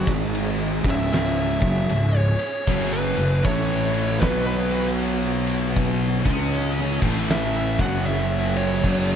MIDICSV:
0, 0, Header, 1, 6, 480
1, 0, Start_track
1, 0, Key_signature, 4, "minor"
1, 0, Tempo, 771208
1, 1666, Time_signature, 4, 2, 24, 8
1, 5699, End_track
2, 0, Start_track
2, 0, Title_t, "Lead electric guitar"
2, 0, Program_c, 0, 29
2, 562, Note_on_c, 0, 76, 93
2, 700, Note_off_c, 0, 76, 0
2, 707, Note_on_c, 0, 76, 87
2, 1346, Note_off_c, 0, 76, 0
2, 1346, Note_on_c, 0, 73, 91
2, 1812, Note_off_c, 0, 73, 0
2, 1822, Note_on_c, 0, 71, 90
2, 2135, Note_off_c, 0, 71, 0
2, 2142, Note_on_c, 0, 73, 84
2, 2610, Note_off_c, 0, 73, 0
2, 2611, Note_on_c, 0, 71, 86
2, 2770, Note_off_c, 0, 71, 0
2, 2778, Note_on_c, 0, 71, 109
2, 3036, Note_off_c, 0, 71, 0
2, 4551, Note_on_c, 0, 76, 94
2, 4859, Note_off_c, 0, 76, 0
2, 4865, Note_on_c, 0, 78, 77
2, 5017, Note_off_c, 0, 78, 0
2, 5020, Note_on_c, 0, 76, 96
2, 5333, Note_off_c, 0, 76, 0
2, 5334, Note_on_c, 0, 73, 95
2, 5699, Note_off_c, 0, 73, 0
2, 5699, End_track
3, 0, Start_track
3, 0, Title_t, "Tonewheel organ"
3, 0, Program_c, 1, 16
3, 0, Note_on_c, 1, 68, 85
3, 36, Note_on_c, 1, 56, 72
3, 36, Note_on_c, 1, 63, 69
3, 509, Note_on_c, 1, 73, 75
3, 518, Note_off_c, 1, 56, 0
3, 518, Note_off_c, 1, 63, 0
3, 518, Note_on_c, 1, 61, 67
3, 1645, Note_off_c, 1, 73, 0
3, 1649, Note_off_c, 1, 61, 0
3, 1663, Note_on_c, 1, 61, 59
3, 1666, Note_on_c, 1, 54, 70
3, 2116, Note_off_c, 1, 68, 0
3, 2140, Note_off_c, 1, 61, 0
3, 2142, Note_off_c, 1, 54, 0
3, 2146, Note_on_c, 1, 71, 79
3, 2154, Note_on_c, 1, 57, 70
3, 2155, Note_on_c, 1, 64, 63
3, 2622, Note_off_c, 1, 71, 0
3, 2626, Note_off_c, 1, 57, 0
3, 2626, Note_off_c, 1, 64, 0
3, 2632, Note_on_c, 1, 73, 82
3, 2641, Note_on_c, 1, 59, 73
3, 2642, Note_on_c, 1, 66, 67
3, 3881, Note_off_c, 1, 73, 0
3, 3886, Note_off_c, 1, 59, 0
3, 3886, Note_off_c, 1, 66, 0
3, 3900, Note_on_c, 1, 68, 67
3, 3900, Note_on_c, 1, 75, 80
3, 3902, Note_on_c, 1, 61, 72
3, 4369, Note_on_c, 1, 64, 64
3, 4371, Note_off_c, 1, 68, 0
3, 4371, Note_off_c, 1, 75, 0
3, 4372, Note_off_c, 1, 61, 0
3, 4372, Note_on_c, 1, 71, 78
3, 4377, Note_on_c, 1, 57, 61
3, 4845, Note_off_c, 1, 64, 0
3, 4847, Note_off_c, 1, 71, 0
3, 4849, Note_off_c, 1, 57, 0
3, 4859, Note_on_c, 1, 68, 77
3, 4861, Note_on_c, 1, 54, 71
3, 4864, Note_on_c, 1, 61, 67
3, 5699, Note_off_c, 1, 54, 0
3, 5699, Note_off_c, 1, 61, 0
3, 5699, Note_off_c, 1, 68, 0
3, 5699, End_track
4, 0, Start_track
4, 0, Title_t, "Distorted electric guitar"
4, 0, Program_c, 2, 30
4, 50, Note_on_c, 2, 44, 91
4, 54, Note_on_c, 2, 51, 101
4, 58, Note_on_c, 2, 56, 106
4, 521, Note_off_c, 2, 44, 0
4, 523, Note_off_c, 2, 51, 0
4, 525, Note_off_c, 2, 56, 0
4, 530, Note_on_c, 2, 37, 97
4, 534, Note_on_c, 2, 44, 95
4, 536, Note_on_c, 2, 49, 106
4, 1001, Note_off_c, 2, 37, 0
4, 1003, Note_off_c, 2, 44, 0
4, 1004, Note_off_c, 2, 49, 0
4, 1010, Note_on_c, 2, 42, 96
4, 1014, Note_on_c, 2, 49, 99
4, 1017, Note_on_c, 2, 54, 100
4, 1181, Note_off_c, 2, 42, 0
4, 1182, Note_off_c, 2, 49, 0
4, 1184, Note_off_c, 2, 54, 0
4, 1197, Note_on_c, 2, 37, 71
4, 1199, Note_on_c, 2, 44, 75
4, 1435, Note_off_c, 2, 37, 0
4, 1436, Note_off_c, 2, 44, 0
4, 1667, Note_on_c, 2, 42, 106
4, 1673, Note_on_c, 2, 49, 101
4, 1677, Note_on_c, 2, 54, 112
4, 1962, Note_off_c, 2, 42, 0
4, 1965, Note_off_c, 2, 49, 0
4, 1967, Note_off_c, 2, 54, 0
4, 1975, Note_on_c, 2, 42, 66
4, 1977, Note_on_c, 2, 49, 69
4, 2114, Note_off_c, 2, 42, 0
4, 2115, Note_off_c, 2, 49, 0
4, 2151, Note_on_c, 2, 52, 106
4, 2152, Note_on_c, 2, 45, 89
4, 2155, Note_on_c, 2, 57, 104
4, 2624, Note_off_c, 2, 45, 0
4, 2624, Note_off_c, 2, 52, 0
4, 2626, Note_off_c, 2, 57, 0
4, 2632, Note_on_c, 2, 47, 99
4, 2636, Note_on_c, 2, 54, 105
4, 2639, Note_on_c, 2, 59, 109
4, 3885, Note_off_c, 2, 47, 0
4, 3887, Note_off_c, 2, 54, 0
4, 3888, Note_off_c, 2, 59, 0
4, 3894, Note_on_c, 2, 49, 89
4, 3902, Note_on_c, 2, 56, 81
4, 3903, Note_on_c, 2, 61, 93
4, 4364, Note_off_c, 2, 49, 0
4, 4368, Note_off_c, 2, 56, 0
4, 4368, Note_off_c, 2, 61, 0
4, 4372, Note_on_c, 2, 45, 92
4, 4379, Note_on_c, 2, 52, 107
4, 4379, Note_on_c, 2, 57, 104
4, 4842, Note_off_c, 2, 45, 0
4, 4846, Note_off_c, 2, 52, 0
4, 4846, Note_off_c, 2, 57, 0
4, 4848, Note_on_c, 2, 42, 95
4, 4853, Note_on_c, 2, 49, 90
4, 4856, Note_on_c, 2, 54, 102
4, 5492, Note_off_c, 2, 42, 0
4, 5497, Note_off_c, 2, 49, 0
4, 5499, Note_on_c, 2, 42, 101
4, 5501, Note_off_c, 2, 54, 0
4, 5505, Note_on_c, 2, 49, 93
4, 5508, Note_on_c, 2, 54, 110
4, 5699, Note_off_c, 2, 42, 0
4, 5699, Note_off_c, 2, 49, 0
4, 5699, Note_off_c, 2, 54, 0
4, 5699, End_track
5, 0, Start_track
5, 0, Title_t, "Fingered electric bass"
5, 0, Program_c, 3, 33
5, 44, Note_on_c, 3, 32, 84
5, 502, Note_off_c, 3, 32, 0
5, 526, Note_on_c, 3, 25, 98
5, 984, Note_off_c, 3, 25, 0
5, 1009, Note_on_c, 3, 30, 100
5, 1173, Note_off_c, 3, 30, 0
5, 1178, Note_on_c, 3, 25, 75
5, 1465, Note_off_c, 3, 25, 0
5, 1662, Note_on_c, 3, 30, 96
5, 1947, Note_off_c, 3, 30, 0
5, 1974, Note_on_c, 3, 30, 77
5, 2136, Note_off_c, 3, 30, 0
5, 2146, Note_on_c, 3, 33, 96
5, 2602, Note_off_c, 3, 33, 0
5, 2624, Note_on_c, 3, 35, 99
5, 3865, Note_off_c, 3, 35, 0
5, 3893, Note_on_c, 3, 37, 92
5, 4347, Note_off_c, 3, 37, 0
5, 4371, Note_on_c, 3, 33, 96
5, 4826, Note_off_c, 3, 33, 0
5, 4852, Note_on_c, 3, 30, 106
5, 5482, Note_off_c, 3, 30, 0
5, 5504, Note_on_c, 3, 30, 98
5, 5699, Note_off_c, 3, 30, 0
5, 5699, End_track
6, 0, Start_track
6, 0, Title_t, "Drums"
6, 44, Note_on_c, 9, 36, 111
6, 45, Note_on_c, 9, 51, 67
6, 106, Note_off_c, 9, 36, 0
6, 107, Note_off_c, 9, 51, 0
6, 215, Note_on_c, 9, 51, 96
6, 277, Note_off_c, 9, 51, 0
6, 525, Note_on_c, 9, 36, 114
6, 525, Note_on_c, 9, 51, 80
6, 588, Note_off_c, 9, 36, 0
6, 588, Note_off_c, 9, 51, 0
6, 703, Note_on_c, 9, 51, 103
6, 710, Note_on_c, 9, 38, 116
6, 766, Note_off_c, 9, 51, 0
6, 773, Note_off_c, 9, 38, 0
6, 1007, Note_on_c, 9, 36, 93
6, 1007, Note_on_c, 9, 51, 75
6, 1069, Note_off_c, 9, 36, 0
6, 1069, Note_off_c, 9, 51, 0
6, 1178, Note_on_c, 9, 51, 106
6, 1241, Note_off_c, 9, 51, 0
6, 1487, Note_on_c, 9, 51, 83
6, 1550, Note_off_c, 9, 51, 0
6, 1659, Note_on_c, 9, 49, 91
6, 1664, Note_on_c, 9, 36, 92
6, 1722, Note_off_c, 9, 49, 0
6, 1726, Note_off_c, 9, 36, 0
6, 1970, Note_on_c, 9, 51, 81
6, 2033, Note_off_c, 9, 51, 0
6, 2143, Note_on_c, 9, 51, 108
6, 2145, Note_on_c, 9, 36, 114
6, 2205, Note_off_c, 9, 51, 0
6, 2207, Note_off_c, 9, 36, 0
6, 2304, Note_on_c, 9, 38, 32
6, 2367, Note_off_c, 9, 38, 0
6, 2451, Note_on_c, 9, 51, 85
6, 2514, Note_off_c, 9, 51, 0
6, 2622, Note_on_c, 9, 51, 103
6, 2625, Note_on_c, 9, 36, 100
6, 2629, Note_on_c, 9, 38, 120
6, 2685, Note_off_c, 9, 51, 0
6, 2687, Note_off_c, 9, 36, 0
6, 2691, Note_off_c, 9, 38, 0
6, 2931, Note_on_c, 9, 51, 66
6, 2993, Note_off_c, 9, 51, 0
6, 3102, Note_on_c, 9, 51, 101
6, 3165, Note_off_c, 9, 51, 0
6, 3405, Note_on_c, 9, 51, 77
6, 3467, Note_off_c, 9, 51, 0
6, 3587, Note_on_c, 9, 36, 105
6, 3588, Note_on_c, 9, 51, 95
6, 3649, Note_off_c, 9, 36, 0
6, 3650, Note_off_c, 9, 51, 0
6, 3892, Note_on_c, 9, 36, 114
6, 3896, Note_on_c, 9, 51, 75
6, 3954, Note_off_c, 9, 36, 0
6, 3958, Note_off_c, 9, 51, 0
6, 4073, Note_on_c, 9, 51, 88
6, 4135, Note_off_c, 9, 51, 0
6, 4227, Note_on_c, 9, 38, 31
6, 4290, Note_off_c, 9, 38, 0
6, 4371, Note_on_c, 9, 36, 105
6, 4373, Note_on_c, 9, 49, 115
6, 4433, Note_off_c, 9, 36, 0
6, 4435, Note_off_c, 9, 49, 0
6, 4548, Note_on_c, 9, 38, 116
6, 4610, Note_off_c, 9, 38, 0
6, 4850, Note_on_c, 9, 36, 95
6, 4851, Note_on_c, 9, 51, 70
6, 4912, Note_off_c, 9, 36, 0
6, 4913, Note_off_c, 9, 51, 0
6, 5021, Note_on_c, 9, 51, 105
6, 5083, Note_off_c, 9, 51, 0
6, 5331, Note_on_c, 9, 51, 78
6, 5393, Note_off_c, 9, 51, 0
6, 5500, Note_on_c, 9, 57, 102
6, 5501, Note_on_c, 9, 36, 97
6, 5563, Note_off_c, 9, 57, 0
6, 5564, Note_off_c, 9, 36, 0
6, 5699, End_track
0, 0, End_of_file